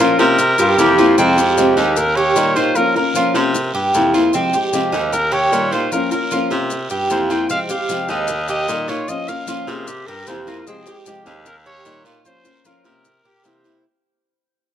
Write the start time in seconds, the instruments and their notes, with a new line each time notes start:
Already playing: baritone saxophone A#2
0.00 nylon-string guitar F3 A#3 C#4 F4, cuban tres F4, trumpet A#4, short guiro
0.19 baritone saxophone C3, nylon-string guitar A#3 C#4 F4, cuban tres A#4, trumpet A#4, short guiro, maracas
0.38 muted nylon-string guitar stroke, long guiro, maracas
0.58 baritone saxophone G2, flute F4, cuban tres G4, maracas
0.77 baritone saxophone F2, nylon-string guitar C3 E3 A#3 C4 E4, flute G4, short guiro, maracas
0.98 nylon-string guitar A#3 C4 E4, cuban tres F4, short guiro, maracas
1.17 baritone saxophone F2, nylon-string guitar C3 F3 G#3 C4 G4, cuban tres C4, long guiro, maracas
1.37 nylon-string guitar G#3 C4 G4, cuban tres G4, maracas
1.57 nylon-string guitar C3 F3 G#3 C4 G4, trumpet G4, short guiro, maracas
1.76 baritone saxophone D#2, nylon-string guitar G#3 C4 G4, cuban tres D#4, short guiro, maracas
1.96 cuban tres A#4, trumpet A#4, muted nylon-string guitar stroke, long guiro, maracas
2.16 cuban tres G4, trumpet C#5
2.35 baritone saxophone A#2, nylon-string guitar D#3 G3 A#3 D#4 G4, cuban tres A#4, short guiro, maracas
2.55 nylon-string guitar A#3 D#4 G4, cuban tres F4, trumpet C5, short guiro, maracas
2.75 nylon-string guitar F3 A#3 C#4 F4, trumpet A#4, long guiro, maracas
2.95 nylon-string guitar A#3 C#4 F4, cuban tres A#4, trumpet A#4
3.14 nylon-string guitar F3 A#3 C#4 F4, cuban tres F4, short guiro, maracas
3.34 baritone saxophone C3, nylon-string guitar A#3 C#4 F4, cuban tres A#4, short guiro, maracas
3.54 muted nylon-string guitar stroke, long guiro, maracas
3.74 baritone saxophone G2, cuban tres G4
3.94 baritone saxophone F2, nylon-string guitar C3 E3 A#3 C4 E4, short guiro, maracas
4.14 nylon-string guitar A#3 C4 E4, cuban tres F4, short guiro, maracas
4.33 nylon-string guitar C3 F3 G#3 C4 G4, cuban tres C4, long guiro, maracas
4.53 nylon-string guitar G#3 C4 G4, cuban tres G4, maracas
4.72 nylon-string guitar C3 F3 G#3 C4 G4, trumpet G4, short guiro, maracas
4.92 baritone saxophone D#2, nylon-string guitar G#3 C4 G4, cuban tres D#4, short guiro, maracas
5.12 cuban tres A#4, trumpet A#4, muted nylon-string guitar stroke, long guiro, maracas
5.32 cuban tres G4, trumpet C#5
5.51 baritone saxophone A#2, nylon-string guitar D#3 G3 A#3 D#4 G4, cuban tres A#4, short guiro, maracas
5.72 nylon-string guitar A#3 D#4 G4, cuban tres F4, trumpet C5, short guiro, maracas
5.91 nylon-string guitar F3 A#3 C#4 F4, trumpet A#4, long guiro, maracas
6.11 nylon-string guitar A#3 C#4 F4, cuban tres A#4, trumpet A#4, maracas
6.31 nylon-string guitar F3 A#3 C#4 F4, cuban tres F4, short guiro, maracas
6.50 baritone saxophone C3, nylon-string guitar A#3 C#4 F4, cuban tres A#4, short guiro, maracas
6.70 muted nylon-string guitar stroke, long guiro, maracas
6.90 baritone saxophone G2, cuban tres G4, maracas
7.09 baritone saxophone F2, nylon-string guitar C3 E3 A#3 C4 E4, trumpet C5, short guiro, maracas
7.30 nylon-string guitar A#3 C4 E4, cuban tres F4, trumpet G5, short guiro, maracas
7.50 nylon-string guitar C3 F3 G#3 C4 G4, cuban tres C4, trumpet F5, long guiro, maracas
7.69 nylon-string guitar G#3 C4 G4, cuban tres G4, trumpet F5, maracas
7.89 nylon-string guitar C3 F3 G#3 C4 G4, short guiro, maracas
8.08 baritone saxophone D#2, nylon-string guitar G#3 C4 G4, cuban tres D#4, trumpet D#5, short guiro, maracas
8.28 cuban tres A#4, muted nylon-string guitar stroke, long guiro, maracas
8.48 cuban tres G4, trumpet D#5, maracas
8.68 baritone saxophone A#2, nylon-string guitar D#3 G3 A#3 D#4 G4, cuban tres A#4, short guiro, maracas
8.88 nylon-string guitar A#3 D#4 G4, cuban tres F4, trumpet C#5, short guiro, maracas
9.08 nylon-string guitar F3 A#3 C#4 F4, trumpet D#5, long guiro, maracas
9.28 nylon-string guitar A#3 C#4 F4, cuban tres A#4, trumpet F5, maracas
9.46 nylon-string guitar F3 A#3 C#4 F4, cuban tres F4, short guiro, maracas
9.67 baritone saxophone C3, nylon-string guitar A#3 C#4 F4, flute G#4, cuban tres A#4, short guiro, maracas
9.87 flute G4, muted nylon-string guitar stroke, long guiro, maracas
10.07 baritone saxophone G2, cuban tres G4, flute A#4
10.27 baritone saxophone F2, nylon-string guitar C3 E3 A#3 C4 E4, flute C5, short guiro, maracas
10.46 nylon-string guitar A#3 C4 E4, cuban tres F4, flute A#4, short guiro, maracas
10.67 nylon-string guitar C3 F3 G#3 C4 G4, cuban tres C4, flute G#4, long guiro, maracas
10.86 nylon-string guitar G#3 C4 G4, cuban tres G4, maracas
11.06 nylon-string guitar C3 F3 G#3 C4 G4, trumpet G4, short guiro, maracas
11.25 baritone saxophone D#2, nylon-string guitar G#3 C4 G4, cuban tres D#4, short guiro, maracas
11.45 cuban tres A#4, trumpet A#4, muted nylon-string guitar stroke, long guiro, maracas
11.66 cuban tres G4, trumpet C#5
11.85 baritone saxophone A#2, nylon-string guitar D#3 G3 A#3 D#4 G4, cuban tres A#4, short guiro, maracas
12.04 nylon-string guitar A#3 D#4 G4, cuban tres F4, short guiro, maracas
12.24 nylon-string guitar F3 A#3 C#4 F4, trumpet C5, long guiro, maracas
12.44 nylon-string guitar A#3 C#4 F4, cuban tres A#4, maracas
12.64 nylon-string guitar F3 A#3 C#4 F4, cuban tres F4, trumpet A#4, short guiro, maracas
12.84 baritone saxophone C3, nylon-string guitar A#3 C#4 F4, cuban tres A#4, trumpet A#4, short guiro, maracas
13.05 muted nylon-string guitar stroke, long guiro, maracas
13.24 baritone saxophone A#2, flute G4, cuban tres G4
13.43 nylon-string guitar C3 E3 A#3 C4 E4, baritone saxophone C3, flute C5, short guiro, maracas
13.64 nylon-string guitar A#3 C4 E4, cuban tres E4, short guiro, maracas